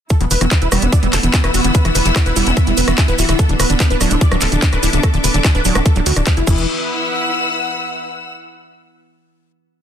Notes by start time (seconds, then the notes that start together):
0.10 E3 B3 E4 A4, kick, closed hi-hat, shaker
0.21 E1 E3 B3, closed hi-hat, shaker
0.31 E1 D3 B4, open hi-hat, shaker
0.39 E1 E3 B3 F#5 E6, cross-stick, closed hi-hat, shaker
0.46 B4
0.51 B3, kick, clap, closed hi-hat, shaker
0.62 E1 E4 B4, closed hi-hat, shaker
0.72 E1 G3 B3, cross-stick, open hi-hat, shaker
0.82 E1 B3 E4, closed hi-hat, shaker
0.92 D5, kick, closed hi-hat, shaker
1.03 E1 G3 B3, closed hi-hat, shaker
1.13 E1 D3 A4, cross-stick, clap, open hi-hat, shaker
1.23 E1 E3 B3, closed hi-hat, shaker
1.34 B3, kick, clap, closed hi-hat, shaker
1.44 E1 B3 E4 B4, cross-stick, closed hi-hat, shaker
1.54 E1 B3 F#4, open hi-hat, shaker
1.64 E1 D3 B3, closed hi-hat, shaker
1.75 B4, kick, closed hi-hat, shaker
1.85 E1 E3 E4, cross-stick, closed hi-hat, shaker
1.95 E1 D3 B4, open hi-hat, shaker
2.05 E1 E3 E4, closed hi-hat, shaker
2.16 kick, cross-stick, clap, closed hi-hat, shaker
2.26 E1 E4 B4, closed hi-hat, shaker
2.36 E1 G3 E4, open hi-hat, shaker
2.46 E1 E4, closed hi-hat, shaker
2.57 E5, kick, cross-stick, closed hi-hat, shaker
2.67 E1 G3 E4, closed hi-hat, shaker
2.77 E1 D3 B4, open hi-hat, shaker
2.88 E1 E3 E4, cross-stick, closed hi-hat, shaker
2.98 E4, kick, clap, closed hi-hat, shaker
3.08 D1 E4 B4, closed hi-hat, shaker
3.18 D1 E4 F#4, open hi-hat, shaker
3.29 D1 D3 E4, cross-stick, closed hi-hat, shaker
3.39 D4 A4, kick, closed hi-hat, shaker
3.49 D1 D3 D4, closed hi-hat, shaker
3.54 A4
3.60 D1 C#3 B4, cross-stick, open hi-hat, shaker
3.70 D1 D3 D4, closed hi-hat, shaker
3.80 D4, kick, clap, closed hi-hat, shaker
3.90 D1 D4 B4, closed hi-hat, shaker
4.01 D1 F#3 D4 E5, cross-stick, open hi-hat, shaker
4.10 D1 D4, closed hi-hat, shaker
4.20 D5 D6, kick, closed hi-hat, shaker
4.31 D1 F#3 D4, cross-stick, closed hi-hat, shaker
4.41 D1 C#3 A4, clap, open hi-hat, shaker
4.52 D1 D3 D4, closed hi-hat, shaker
4.62 kick, clap, closed hi-hat, shaker
4.72 D1 D4 B4, cross-stick, closed hi-hat, shaker
4.83 D1 D4 E4, open hi-hat, shaker
4.93 D1 C#3 D4, closed hi-hat, shaker
5.03 A4, kick, cross-stick, closed hi-hat, shaker
5.14 D1 D3 D4, closed hi-hat, shaker
5.24 D1 C#3 B4, open hi-hat, shaker
5.34 D1 D3 D4, closed hi-hat, shaker
5.45 D4, kick, cross-stick, clap, closed hi-hat, shaker
5.55 D1 D4 B4, closed hi-hat, shaker
5.65 D1 F#3 D4, open hi-hat, shaker
5.75 D1 D4, cross-stick, closed hi-hat, shaker
5.86 A4, kick, closed hi-hat, shaker
5.95 D1 F#3 D4, closed hi-hat, shaker
6.06 D2 D3 F#4, open hi-hat, shaker
6.16 D1 D3 D4, cross-stick, closed hi-hat, shaker
6.26 kick, clap, closed hi-hat, shaker
6.36 F#1 E4, closed hi-hat, shaker
6.47 E1 E3 E4, kick, crash, shaker
6.53 B4
6.58 shaker
6.80 F#5
6.86 E6